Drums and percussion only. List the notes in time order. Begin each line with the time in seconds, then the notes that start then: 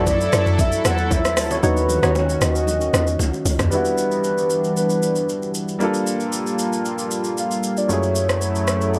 0.07 kick, high bongo, shaker
0.21 shaker
0.33 cross-stick, low bongo, shaker
0.46 mid tom, shaker
0.58 kick, low conga, shaker
0.72 shaker
0.85 cross-stick, low bongo, shaker
0.98 shaker
1.11 kick, high bongo, shaker
1.25 cross-stick, shaker
1.37 cross-stick, open hi-hat, high bongo, shaker
1.51 low bongo, shaker
1.63 low conga, shaker
1.77 shaker
1.89 low conga, shaker
2.03 cross-stick, low bongo, shaker
2.15 high bongo, shaker
2.29 shaker
2.41 cross-stick, low bongo, shaker
2.55 shaker
2.67 low conga, shaker
2.81 shaker
2.94 cross-stick, low bongo, shaker
3.07 shaker
3.19 high bongo, shaker
3.34 shaker
3.46 open hi-hat, high bongo, shaker
3.59 cross-stick, mid tom, low bongo, shaker
3.72 shaker
3.85 shaker
3.98 shaker
4.11 shaker
4.24 shaker
4.38 shaker
4.50 shaker
4.64 shaker
4.77 shaker
4.90 shaker
5.03 shaker
5.16 shaker
5.29 shaker
5.42 shaker
5.55 shaker
5.68 shaker
5.80 shaker
5.94 shaker
6.07 shaker
6.20 shaker
6.32 shaker
6.47 shaker
6.59 shaker
6.73 shaker
6.85 shaker
6.98 shaker
7.11 shaker
7.24 shaker
7.37 shaker
7.51 shaker
7.63 shaker
7.77 shaker
7.90 shaker
8.03 shaker
8.15 shaker
8.29 cross-stick, shaker
8.41 shaker
8.55 shaker
8.67 cross-stick, shaker
8.81 shaker
8.94 shaker